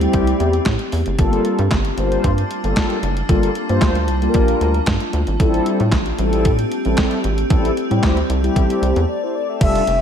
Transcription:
Already playing: A3 C4 G4
0.01 G3 C4 E4 G4, closed hi-hat
0.13 C2, kick, closed hi-hat
0.27 closed hi-hat
0.40 E2, closed hi-hat
0.53 closed hi-hat
0.65 A2, kick, snare, clap, closed hi-hat
0.79 closed hi-hat
0.92 E2, open hi-hat
1.06 F#1, closed hi-hat
1.18 G1 G3 A#3 D4 F4 A4 A5, kick, closed hi-hat
1.33 closed hi-hat
1.45 closed hi-hat
1.59 G2, closed hi-hat
1.71 G1, kick, snare, clap, closed hi-hat
1.85 closed hi-hat
1.97 G1 G3 A#3 F4 C5, closed hi-hat
2.12 closed hi-hat
2.24 G2, kick, closed hi-hat
2.38 closed hi-hat
2.51 closed hi-hat
2.64 G1 G3 A#3 F4 A4, closed hi-hat
2.76 kick, snare, clap, closed hi-hat
2.90 closed hi-hat
3.03 F#1, closed hi-hat
3.17 closed hi-hat
3.29 G1 G3 A#3 F4 A4, kick, closed hi-hat
3.43 closed hi-hat
3.55 closed hi-hat
3.69 G2 G3 A#3 F4 C5, closed hi-hat
3.81 D2, kick, snare, clap, closed hi-hat
3.95 closed hi-hat
4.08 C2, closed hi-hat
4.22 G3 A#3 F4 A4, closed hi-hat
4.29 A#4
4.34 A#1, kick, closed hi-hat
4.48 closed hi-hat
4.61 D2, closed hi-hat
4.74 closed hi-hat
4.86 G2, kick, snare, clap, closed hi-hat
5.00 closed hi-hat
5.13 D2, closed hi-hat
5.27 G#1, closed hi-hat
5.40 A1 G3 A3 C4 E4 G4 A4, kick, closed hi-hat
5.54 closed hi-hat
5.66 closed hi-hat
5.80 A2, closed hi-hat
5.92 A1, kick, snare, clap, closed hi-hat
6.06 closed hi-hat
6.18 A1 G3 C4 E4 A4, closed hi-hat
6.33 closed hi-hat
6.45 A2, kick, closed hi-hat
6.59 closed hi-hat
6.72 closed hi-hat
6.85 A1 G3 C4 E4 A4, closed hi-hat
6.97 kick, snare, clap, closed hi-hat
7.11 closed hi-hat
7.24 G#1, closed hi-hat
7.38 closed hi-hat
7.49 A1 G3 C4 E4 A4, kick, closed hi-hat
7.65 closed hi-hat
7.77 closed hi-hat
7.90 A2 G3 C4 E4 G4, closed hi-hat
8.03 D2, kick, snare, clap, closed hi-hat
8.17 closed hi-hat
8.29 C2, closed hi-hat
8.43 G3 C4 E4 G4, closed hi-hat
8.56 A1, kick, closed hi-hat
8.70 closed hi-hat
8.82 C2, closed hi-hat
8.96 E2, closed hi-hat
9.09 D5
9.23 E4 C5
9.35 D5
9.49 G4 E5
9.61 F1 G3 D4 F4 A4 E5, kick, closed hi-hat, crash
9.75 closed hi-hat
9.87 F1, closed hi-hat

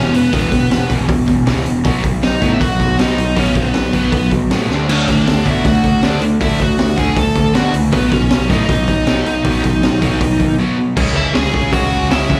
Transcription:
Already playing: E1 E2 B2 E3 C#4 C#5
0.13 E1 E2 B2 B3 B4, open hi-hat
0.32 E1 E2 B2 E3, kick, open hi-hat
0.52 E1 E2 B2, kick, open hi-hat
0.70 E1 E2 B2, snare, open hi-hat
0.89 E1 E2 B2 E3, kick, open hi-hat
1.08 E1 E2 B2, kick, open hi-hat
1.26 E1 E2 B2, kick, open hi-hat
1.46 C#2 E2 B2 E3, snare, open hi-hat
1.65 E1 E2 B2, open hi-hat
1.84 B1 B2 F#3 B3, kick, open hi-hat
2.03 B1 B2 F#3, kick, open hi-hat
2.22 B1 B2 F#3 D#4 D#5, snare, open hi-hat
2.41 A2 B2 F#3 B3, kick, open hi-hat
2.54 E5
2.60 B1 B2 F#3 F#4 F#5, kick, open hi-hat
2.79 B1 B2 F#3, kick, open hi-hat
2.98 B1 B2 F#3 B3 D#4 D#5, snare, open hi-hat
3.17 B1 B2 F#3, open hi-hat
3.35 B1 B2 F#3 B3 C#4 C#5, kick, open hi-hat
3.55 B1 B2 F#3 B3 B4, kick, open hi-hat
3.74 B1 B2 F#3, snare, open hi-hat
3.93 B1 B2 F#3 B3 B4, kick, open hi-hat
4.12 B1 B2 F#3, kick, open hi-hat
4.30 B1 B2 F#3, kick, open hi-hat
4.50 A2 B2 F#3 B3, snare, open hi-hat
4.69 D2 D3 A3 D4, snare
4.88 D2 D3 A3 C#4 D4 C#5, crash
5.08 D2 D3 A3 D4 D5, kick, open hi-hat
5.27 D2 D3 A3, snare, open hi-hat
5.46 B2 D3 A3 D4 E4 E5, kick, open hi-hat
5.65 D2 D3 A3 F#4 F#5, kick, open hi-hat
5.84 D2 D3 A3, kick, open hi-hat
6.02 D2 D3 A3 D4 D5, snare, open hi-hat
6.21 D2 D3 A3, open hi-hat
6.40 D2 D3 A3 D4 E4 E5, kick, open hi-hat
6.59 D2 D3 A3 F#4 F#5, kick, open hi-hat
6.78 D2 D3 A3, snare, open hi-hat
6.97 D2 D3 A3 D4 G#4 G#5, kick, open hi-hat
7.16 D2 D3 A3 A4 A5, kick, open hi-hat
7.35 D2 D3 A3, kick, open hi-hat
7.54 B2 D3 A3 D4 F#4 F#5, snare, open hi-hat
7.73 C#2 D3 A3, open hi-hat
7.91 B1 B2 F#3 B3 B4, kick, open hi-hat
8.10 B1 B2 F#3 C#4 C#5, kick, open hi-hat
8.29 B1 B2 F#3, snare, open hi-hat
8.48 A2 B2 F#3 B3 D#4 D#5, kick, open hi-hat
8.68 B1 B2 F#3 D#4 D#5, kick, open hi-hat
8.88 B1 B2 F#3, kick, open hi-hat
9.06 B1 B2 F#3 B3, snare, open hi-hat
9.25 B1 B2 F#3, open hi-hat
9.44 B1 B2 F#3 B3, kick, open hi-hat
9.63 B1 B2 F#3, kick, open hi-hat
9.82 B1 B2 F#3, snare, open hi-hat
10.01 B1 B2 F#3 B3, kick, open hi-hat
10.20 B1 B2 F#3, kick, open hi-hat
10.39 D#2 B2 F#3, kick, open hi-hat
10.58 B2 F#3 B3
10.78 B2 F#3
10.96 C#2 C#3 G#3 C#4, kick, crash
11.15 C#2 E4 E5
11.33 C#2 C#3 G#3 C#4 G#4 G#5, snare, open hi-hat
11.53 C#2 C#3 G#3 C#4, kick
11.71 C#2 C#3 G#3 C#4 F#4 F#5, kick, open hi-hat
11.91 C#2
12.10 C#2 C#3 G#3 C#4 E4 E5, snare, open hi-hat
12.28 F2 C#3 G#3 C#4, kick

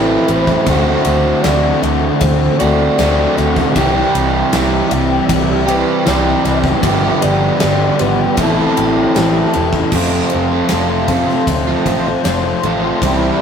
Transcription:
Already playing: A1 A2 E3 A3 C4 E4 G4 B4
0.26 A1 E3 C4 E4 C5, ride
0.31 A3
0.47 kick, snare
0.65 D2 D3 E3 A3 C4 F#4 C5, kick, ride
1.05 D2 A3, ride
1.41 D2 D3 E3 A3 D5, snare, ride
1.46 C4 F#4
1.82 D2 A3 C4 F#4 E5, ride
2.20 D2 C4 C5, kick, ride
2.58 D2 C4 F#4 D5, ride
2.62 D3 A3
2.98 D2 D3 A3 C4 F#4, snare, ride
3.36 D2 E3 C4 F#4 E5, snare, ride
3.41 A3
3.56 kick, snare
3.74 C2 C3 E3 G3 G4 E5 B5, kick, ride
3.78 C4 G4
4.13 C2 E5, ride
4.52 C2 E3 G3 C4 G4, snare, ride
4.89 C2 G3 C4 G4 G5, ride
5.28 C2 E4 G5, kick, ride
5.66 E3 G3 C4 G4 B4, ride
5.70 C3
6.05 C2 C3 E3 G3 C4 E4 G4 D5, snare, ride
6.44 C2 E3 G3 C4 G4 E5, snare, ride
6.64 kick, snare
6.82 G1 G2 D3 F3 G3 B3 F4 G4 D5 E5 G5, kick, ride
7.22 G1 B3 D5, ride
7.59 F3 G3 B3 G4, snare, ride
7.64 G1
7.98 G#1 F3 G3 B3 G4 B4, ride
8.37 A1 A2 E3 C4 E4 G4 A4 C5 E5, kick, ride
8.41 A5 B5
8.76 A1 G4, ride
9.15 A1 E3 C4 E4, snare, ride
9.19 A4
9.53 E1 E3 C4 E4 A4, ride
9.72 kick, snare
9.92 F1 F2 C3 F3 A3 C4 F4 C5 A5 C6, kick, crash
10.30 F3 A3 C4, ride
10.34 F1 F4
10.51 F3 A3 C4 F4
10.69 F1 F2 C3 F3 A3 C4 E5, snare, ride
10.73 F4
10.89 F3 A3 C4 F4
11.08 F3 A3 A4 F5, muted overdriven electric guitar stroke, kick, ride
11.12 C4 F4
11.27 F3 A3 C4 F4, muted overdriven electric guitar stroke, snare
11.45 D2 C4 E5, kick, ride
11.67 F3 A3 C4 F4
11.84 A1 F3 A3 C4 F4, kick, ride
12.08 muted overdriven electric guitar stroke
12.23 F1 F2 C3 F3 A3 C4 F4 C5, snare, ride
12.43 F3 A3 C4 F4
12.62 A1 F3 A3 C4 F4, ride
12.82 F3 A3 C4 F4
13.01 C2 C3 E3 G3 C4 G4 B5, kick, ride
13.06 E4

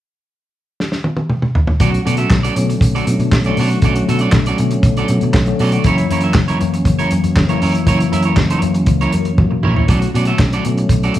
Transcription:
0.80 snare
0.92 snare
1.04 high tom
1.17 high tom
1.30 mid tom
1.42 mid tom
1.55 floor tom
1.67 floor tom
1.80 B1 D3 F#3 A3 C#4 F#4 A4 D5, kick, closed hi-hat
1.92 muted clean electric guitar stroke, closed hi-hat
2.04 B2 D3 F#3 A3 C#4 F#4 A4 D5, closed hi-hat
2.17 F#4 A4 E5, closed hi-hat
2.30 B1, muted clean electric guitar stroke, kick, snare, clap
2.43 F#4 A4 D5, closed hi-hat
2.56 B2 D3 F#3 A3 C#4, muted clean electric guitar stroke, closed hi-hat
2.70 muted clean electric guitar stroke, closed hi-hat
2.81 B1, muted clean electric guitar stroke, kick, closed hi-hat
2.95 F#4 A4 D5, closed hi-hat
3.07 B2 D3 F#3 A3 D4, muted clean electric guitar stroke, closed hi-hat
3.19 B2, muted clean electric guitar stroke, closed hi-hat
3.32 B1, muted clean electric guitar stroke, kick, snare, clap
3.44 D3 F#3 A3 C#4 F#4 A4 D5, closed hi-hat
3.57 B2 F#4 A4 D5, open hi-hat
3.70 muted clean electric guitar stroke, closed hi-hat
3.82 B1 D3 F#3 A3 C#4 F#4 A4 D5, kick, closed hi-hat
3.96 muted clean electric guitar stroke, closed hi-hat
4.08 B2 D3 F#3 A3 C#4 F#4 A4 E5, closed hi-hat
4.19 F#4 A4 D5, closed hi-hat
4.32 B1, kick, snare, clap
4.46 F#4 A4 D5, closed hi-hat
4.58 B2 D3 F#3 A3 C#4, muted clean electric guitar stroke, closed hi-hat
4.71 muted clean electric guitar stroke, closed hi-hat
4.83 B1, muted clean electric guitar stroke, kick, closed hi-hat
4.97 F#4 A4 D5, closed hi-hat
5.08 B2 D3 F#3 A3 C#4, muted clean electric guitar stroke, closed hi-hat
5.21 B2, muted clean electric guitar stroke, closed hi-hat
5.34 B1, muted clean electric guitar stroke, kick, snare, clap
5.46 D3 F#3 A3 C#4, muted clean electric guitar stroke, closed hi-hat
5.59 B2 F#4 A4 D5, open hi-hat
5.72 F#4 A4 D5, closed hi-hat
5.84 F#1 E3 F#3 A#3 C#4 E4 A#4 C#5, kick, closed hi-hat
5.98 muted clean electric guitar stroke, closed hi-hat
6.10 F#2 E3 F#3 A#3 C#4 E4 A#4 C#5, closed hi-hat
6.21 A#4 E5, closed hi-hat
6.25 E4
6.34 F#1, muted clean electric guitar stroke, kick, snare, clap
6.48 E4 A#4 C#5, closed hi-hat
6.60 F#2 E3 F#3 A#3 C#4, muted clean electric guitar stroke, closed hi-hat
6.74 muted clean electric guitar stroke, closed hi-hat
6.85 F#1, muted clean electric guitar stroke, kick, closed hi-hat
6.99 E4 A#4 C#5, closed hi-hat
7.11 F#2 E3 F#3 A#3 C#4, muted clean electric guitar stroke, closed hi-hat
7.24 F#2, muted clean electric guitar stroke, closed hi-hat
7.36 F#1, muted clean electric guitar stroke, kick, snare, clap
7.48 E3 F#3 A#3 C#4 E4 A#4 C#5, closed hi-hat
7.62 F#2 E4 A#4 C#5, open hi-hat
7.75 muted clean electric guitar stroke, closed hi-hat
7.86 F#1 E3 F#3 A#3 E4 A#4 C#5, kick, closed hi-hat
8.00 muted clean electric guitar stroke, closed hi-hat
8.11 F#2 E3 F#3 A#3 C#4 E4 A#4 E5, closed hi-hat
8.23 A#4 C#5, closed hi-hat
8.27 E4
8.37 F#1, muted clean electric guitar stroke, kick, snare, clap
8.50 E4 A#4 C#5, closed hi-hat
8.62 F#2 E3 F#3 A#3 C#4, muted clean electric guitar stroke, closed hi-hat
8.74 muted clean electric guitar stroke, closed hi-hat
8.86 C#2, muted clean electric guitar stroke, kick, closed hi-hat
9.01 E4 A#4 C#5, closed hi-hat
9.12 F#2 C#4 A#4, closed hi-hat
9.25 muted clean electric guitar stroke, closed hi-hat
9.38 F#2 A#3 F#4, muted clean electric guitar stroke, kick, high tom
9.51 muted clean electric guitar stroke, mid tom
9.63 A#1 E4 A#4 C#5, mid tom
9.76 E4 A#4 C#5, floor tom
9.88 B1 D3 F#3 A3 C#4 F#4 A4 D5, kick, closed hi-hat
10.02 muted clean electric guitar stroke, closed hi-hat
10.14 B2 D3 F#3 A3 C#4 F#4 A4 D5, closed hi-hat
10.25 F#4 A4 E5, closed hi-hat
10.39 B1, kick, snare, clap
10.52 F#4 A4 D5, snare, closed hi-hat
10.65 B2 D3 F#3 A3 C#4, muted clean electric guitar stroke, closed hi-hat
10.77 muted clean electric guitar stroke, closed hi-hat
10.89 B1, muted clean electric guitar stroke, kick, closed hi-hat
11.03 F#4 A4 D5, closed hi-hat
11.14 B2 D3, closed hi-hat

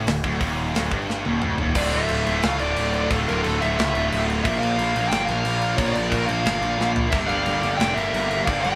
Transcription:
0.07 D1 D2, snare, open hi-hat
0.24 D1 D2, kick
0.40 D#1 D#2, kick, open hi-hat
0.74 D1 D2, snare, open hi-hat
0.91 G1 G2, kick
1.10 snare
1.25 D#1 D#2, high tom
1.42 D1 D2, mid tom
1.58 D#1 D#2, floor tom
1.75 D1 D2 A2 D3 A3 F4 D5, kick, crash
1.79 A3 F4
1.85 A3 F4
1.92 D1 A3 F4 E5, crash
2.01 A3 F4
2.09 D1 A3 F4, crash
2.16 A3 F4
2.24 D1 D3 A3 F4, crash
2.29 D2 A2 A3
2.33 F4
2.38 A3 F4
2.42 C#2 F5, snare, crash
2.48 A3 F4
2.55 A3 F4, crash
2.60 D1 A3 F4 D5
2.72 A3 F4
2.76 D1 A3 F4, crash
2.86 A3 F4
2.93 A3 F4, crash
3.01 A3 F4
3.10 D1 D2 A2 D3 A3 F4 A4, kick, crash
3.19 A3 F4
3.26 D1 A3 F4 A#4, crash
3.35 A3 F4
3.42 D1 A3 F4 A4, crash
3.50 A3 F4
3.59 D1 A2 D3 A3 F4 E5, crash
3.64 D2 A3 F4
3.74 A3 F4
3.79 C#2 A3 F4, snare, crash
3.89 A3 F4
3.95 D1 A3 F4, crash
4.04 A3 F4
4.12 D1 A3 F4, crash
4.20 A3 F4
4.27 A3 F4, crash
4.35 A3 F4
4.44 A#1 A#2 F3 A#3 D4 F4 A#4 E5, kick, crash
4.48 F4 A#4
4.52 F4 A#4
4.59 A#1 F4 A#4 F5
4.63 crash
4.68 F4 A#4
4.76 A#1 F4 A#4, crash
4.84 F4 A#4
4.92 A#1 A#3 F4 A#4, crash
4.98 A#2 F3 F4 A#4
5.07 F4 A#4 G5
5.11 G1, snare, crash
5.16 F4 A#4
5.23 F4 A#4 F5
5.28 A#1 F4 A#4, crash
5.38 F4 A#4
5.45 A#1 F4 A#4, crash
5.55 F4 A#4
5.62 F4 A#4, crash
5.70 F4 A#4
5.77 A#1 A#2 F3 A#3 D4 F4 A#4 C#5, kick, crash
5.81 F4 A#4
5.87 F4 A#4
5.93 A#1 F4 A#4 D5, crash
6.02 F4 A#4
6.08 A#1 F4 A#4, kick, crash
6.16 F4 A#4
6.24 F4 A#4 F5
6.29 A#1 A#2 F3 A#3 F4, crash
6.33 A#4
6.38 F4 A#4
6.46 G1 F4 A#4, snare, crash
6.54 F4 A#4
6.62 A#1 F4 A#4, crash
6.69 F4 A#4
6.76 A#1 F4 A#4
6.81 F4 A#4, snare
6.92 F4 A#4
6.96 F4 A#4, floor tom
7.06 F4 A#4
7.10 G1 G2 D3 D4 G4 E5, kick, splash, crash
7.15 G3 A#3 D4 G4
7.20 D4 G4
7.26 G1 D4 G4 D5 F5, crash
7.37 D4 G4
7.44 G1 D4 G4, crash
7.51 D4 G4
7.60 G1 G3 D4 G4, crash
7.65 G2 D3 D4
7.69 G4
7.75 F1 D4 G4 D5 G5
7.80 D4, snare, crash
7.84 G4
7.90 D4 G4
7.95 G1 D4 A#4 E5, crash
8.00 G4
8.06 D4 G4
8.13 G1 D4 G4, crash
8.22 D4 G4
8.30 D4 G4, crash
8.37 D4 G4
8.45 G1 G2 D4 G4 D5 F5, kick, crash
8.49 D3 G3 A#3 D4 G4
8.55 D4 G4
8.61 G1 D4 G4 D5 G5, crash
8.70 D4 G4

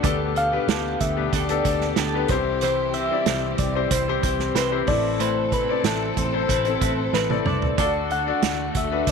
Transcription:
Already playing: A3
0.03 D2 B2 D3 B3 D4 G4 A4 D5, kick, closed hi-hat
0.35 D4 G4 A4 F5, closed hi-hat
0.52 B3 D4 G4 B4
0.68 D2 D3 B3 D4 G4 A4, snare, closed hi-hat
1.00 D2 E5, kick, closed hi-hat
1.17 B3 D4 G4 B4
1.33 D2 B3 D4 G4 A4 D5, kick, closed hi-hat
1.49 B3 D4 G4 A4, closed hi-hat
1.64 D2 D4 G4 A4, kick, closed hi-hat
1.81 snare
1.96 D2 D3 B3 D4 G4 A4, snare, closed hi-hat
2.14 B3 D4 G4 B4
2.28 C2 C3 E3 G3 C4 E4 G4 C5, kick, closed hi-hat
2.61 C3 E3 G3 C4 E4 C5, closed hi-hat
2.94 G3 C4 E4 C5 E5, closed hi-hat
3.11 C4 E4 G4 D5
3.26 C2 C3 E3 G3 C4 E4 C5, snare, closed hi-hat
3.58 C2 D5, kick, closed hi-hat
3.75 C4 E4 G4 C5
3.90 C2 G3 C4 E4 C5, kick, closed hi-hat
4.08 C4 E4 G4 C5
4.23 C2 G3 C4 E4 C5, kick, closed hi-hat
4.39 snare
4.55 C2 C3 E3 G3 C4 E4 B4 C5, snare, closed hi-hat
4.71 C4 E4 G4 C5
4.87 A1 A2 C3 A3 C4 E4 A4 B4 D5, kick, open hi-hat
5.20 A2 E3 A3 C4 E4 B4 C5, closed hi-hat
5.52 A3 C4 E4 B4, kick, closed hi-hat
5.69 C4 E4 A4 D5
5.84 A1 A2 E3 A3 C4 E4 A4 B4, snare, closed hi-hat
6.17 A1 C5, kick, closed hi-hat
6.33 C4 E4 A4 C5
6.48 A1 A3 C4 E4 B4, kick, closed hi-hat
6.65 C4 E4 A4, closed hi-hat
6.81 A1 A3 C4 E4 B4, kick, closed hi-hat
7.13 A1 A2 E3 A3 C4 E4 B4, snare
7.29 C4 E4 A4 D5, high tom
7.45 C2 A3 C4 E4 B4 D5, mid tom
7.62 floor tom
7.77 D2 D3 A3 D4 F4 F#4 A4 D5, kick, closed hi-hat
7.85 F#4
8.10 D4 F#4 A4 F#5, closed hi-hat
8.27 D4 F#4 A4 D5
8.42 D2 D3 A3 D4 F#4 A4, snare, closed hi-hat
8.75 D2 E5, kick, closed hi-hat
8.91 D4 F#4 A4 B4
9.07 D2 A3 D4, kick, closed hi-hat

